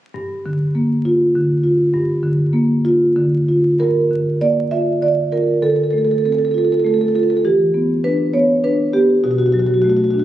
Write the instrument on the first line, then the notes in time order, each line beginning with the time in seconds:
marimba
0.14 G2
0.46 D3
0.75 A#3
1.05 F4
1.35 D3
1.64 F4
1.94 G2
2.23 D3
2.53 A#3
2.85 F4
3.16 D3
3.49 F4
3.79 G2 A#4
4.11 D3
4.41 A#3 D5
4.71 F4 E5
5.02 D3 D5
5.32 F4 A#4
5.62 D3 A4
5.70 A4
5.76 A4
5.84 A4
5.91 A3 A4
5.98 A4
6.04 A4
6.11 A4
6.18 A4
6.25 C4 A4
6.32 A4
6.39 A4
6.45 A4
6.51 F4 A4
6.58 A4
6.65 A4
6.72 A4
6.80 A4
6.85 A3 A4
6.94 A4
7.01 A4
7.08 A4
7.15 F4 A4
7.23 A4
7.30 A4
7.37 A4
7.45 E3 G4
7.74 B3
8.04 D4 B4
8.34 B3 C#5
8.64 D4 B4
8.93 B3 G4
9.24 B2 F#4
9.31 F#4
9.38 F#4
9.46 F#4
9.53 F#3 F#4
9.59 F#4
9.66 F#4
9.74 F#4
9.82 A3 F#4
9.90 F#4
9.97 F#4
10.04 F#4
10.11 D4 F#4
10.20 F#4